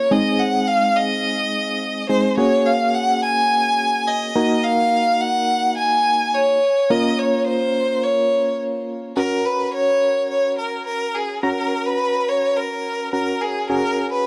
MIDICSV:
0, 0, Header, 1, 3, 480
1, 0, Start_track
1, 0, Tempo, 566038
1, 93, Time_signature, 4, 2, 24, 8
1, 12098, End_track
2, 0, Start_track
2, 0, Title_t, "Violin"
2, 0, Program_c, 0, 40
2, 0, Note_on_c, 0, 73, 93
2, 95, Note_on_c, 0, 75, 101
2, 108, Note_off_c, 0, 73, 0
2, 335, Note_on_c, 0, 78, 100
2, 348, Note_off_c, 0, 75, 0
2, 574, Note_on_c, 0, 77, 105
2, 587, Note_off_c, 0, 78, 0
2, 815, Note_on_c, 0, 75, 112
2, 828, Note_off_c, 0, 77, 0
2, 1771, Note_off_c, 0, 75, 0
2, 1776, Note_on_c, 0, 72, 97
2, 1998, Note_off_c, 0, 72, 0
2, 2015, Note_on_c, 0, 73, 106
2, 2255, Note_on_c, 0, 77, 104
2, 2268, Note_off_c, 0, 73, 0
2, 2496, Note_on_c, 0, 78, 115
2, 2509, Note_off_c, 0, 77, 0
2, 2729, Note_off_c, 0, 78, 0
2, 2735, Note_on_c, 0, 80, 122
2, 3456, Note_on_c, 0, 75, 106
2, 3469, Note_off_c, 0, 80, 0
2, 3935, Note_on_c, 0, 77, 113
2, 3948, Note_off_c, 0, 75, 0
2, 4416, Note_on_c, 0, 78, 112
2, 4428, Note_off_c, 0, 77, 0
2, 4890, Note_off_c, 0, 78, 0
2, 4895, Note_on_c, 0, 80, 111
2, 5375, Note_on_c, 0, 73, 100
2, 5387, Note_off_c, 0, 80, 0
2, 5854, Note_on_c, 0, 75, 105
2, 5866, Note_off_c, 0, 73, 0
2, 6094, Note_on_c, 0, 73, 94
2, 6106, Note_off_c, 0, 75, 0
2, 6328, Note_off_c, 0, 73, 0
2, 6333, Note_on_c, 0, 72, 100
2, 6813, Note_on_c, 0, 73, 87
2, 6826, Note_off_c, 0, 72, 0
2, 7293, Note_off_c, 0, 73, 0
2, 7774, Note_on_c, 0, 70, 102
2, 8013, Note_on_c, 0, 71, 96
2, 8025, Note_off_c, 0, 70, 0
2, 8249, Note_off_c, 0, 71, 0
2, 8254, Note_on_c, 0, 73, 114
2, 8700, Note_off_c, 0, 73, 0
2, 8736, Note_on_c, 0, 73, 105
2, 8958, Note_off_c, 0, 73, 0
2, 8975, Note_on_c, 0, 70, 98
2, 9197, Note_off_c, 0, 70, 0
2, 9214, Note_on_c, 0, 70, 97
2, 9455, Note_on_c, 0, 68, 89
2, 9467, Note_off_c, 0, 70, 0
2, 9689, Note_off_c, 0, 68, 0
2, 9694, Note_on_c, 0, 70, 99
2, 10054, Note_on_c, 0, 71, 100
2, 10067, Note_off_c, 0, 70, 0
2, 10415, Note_on_c, 0, 73, 98
2, 10428, Note_off_c, 0, 71, 0
2, 10655, Note_on_c, 0, 70, 95
2, 10668, Note_off_c, 0, 73, 0
2, 11131, Note_off_c, 0, 70, 0
2, 11136, Note_on_c, 0, 70, 91
2, 11374, Note_on_c, 0, 68, 85
2, 11387, Note_off_c, 0, 70, 0
2, 11609, Note_off_c, 0, 68, 0
2, 11615, Note_on_c, 0, 70, 97
2, 11949, Note_off_c, 0, 70, 0
2, 11975, Note_on_c, 0, 71, 96
2, 12098, Note_off_c, 0, 71, 0
2, 12098, End_track
3, 0, Start_track
3, 0, Title_t, "Synth keys"
3, 0, Program_c, 1, 88
3, 94, Note_on_c, 1, 56, 67
3, 94, Note_on_c, 1, 68, 75
3, 95, Note_on_c, 1, 60, 62
3, 95, Note_on_c, 1, 63, 60
3, 1740, Note_off_c, 1, 56, 0
3, 1740, Note_off_c, 1, 68, 0
3, 1741, Note_off_c, 1, 60, 0
3, 1741, Note_off_c, 1, 63, 0
3, 1774, Note_on_c, 1, 56, 51
3, 1774, Note_on_c, 1, 60, 47
3, 1774, Note_on_c, 1, 63, 48
3, 1774, Note_on_c, 1, 68, 57
3, 2004, Note_off_c, 1, 68, 0
3, 2014, Note_off_c, 1, 56, 0
3, 2014, Note_off_c, 1, 60, 0
3, 2014, Note_off_c, 1, 63, 0
3, 2014, Note_on_c, 1, 58, 68
3, 2014, Note_on_c, 1, 61, 63
3, 2014, Note_on_c, 1, 66, 63
3, 2014, Note_on_c, 1, 68, 74
3, 3660, Note_off_c, 1, 58, 0
3, 3660, Note_off_c, 1, 61, 0
3, 3660, Note_off_c, 1, 66, 0
3, 3660, Note_off_c, 1, 68, 0
3, 3693, Note_on_c, 1, 58, 70
3, 3693, Note_on_c, 1, 63, 64
3, 3693, Note_on_c, 1, 66, 66
3, 3693, Note_on_c, 1, 70, 79
3, 5579, Note_off_c, 1, 58, 0
3, 5579, Note_off_c, 1, 63, 0
3, 5579, Note_off_c, 1, 66, 0
3, 5579, Note_off_c, 1, 70, 0
3, 5853, Note_on_c, 1, 58, 67
3, 5853, Note_on_c, 1, 61, 62
3, 5853, Note_on_c, 1, 65, 61
3, 5853, Note_on_c, 1, 70, 75
3, 7739, Note_off_c, 1, 61, 0
3, 7739, Note_off_c, 1, 65, 0
3, 7739, Note_off_c, 1, 70, 0
3, 7740, Note_off_c, 1, 58, 0
3, 7773, Note_on_c, 1, 66, 58
3, 7774, Note_on_c, 1, 61, 63
3, 7774, Note_on_c, 1, 70, 72
3, 9659, Note_off_c, 1, 66, 0
3, 9660, Note_off_c, 1, 61, 0
3, 9660, Note_off_c, 1, 70, 0
3, 9693, Note_on_c, 1, 66, 57
3, 9693, Note_on_c, 1, 82, 72
3, 9694, Note_on_c, 1, 61, 65
3, 11105, Note_off_c, 1, 61, 0
3, 11105, Note_off_c, 1, 66, 0
3, 11105, Note_off_c, 1, 82, 0
3, 11133, Note_on_c, 1, 61, 50
3, 11134, Note_on_c, 1, 66, 46
3, 11134, Note_on_c, 1, 70, 55
3, 11603, Note_off_c, 1, 66, 0
3, 11604, Note_off_c, 1, 61, 0
3, 11613, Note_on_c, 1, 68, 70
3, 11614, Note_off_c, 1, 70, 0
3, 11614, Note_on_c, 1, 61, 67
3, 11614, Note_on_c, 1, 66, 58
3, 12098, Note_off_c, 1, 61, 0
3, 12098, Note_off_c, 1, 66, 0
3, 12098, Note_off_c, 1, 68, 0
3, 12098, End_track
0, 0, End_of_file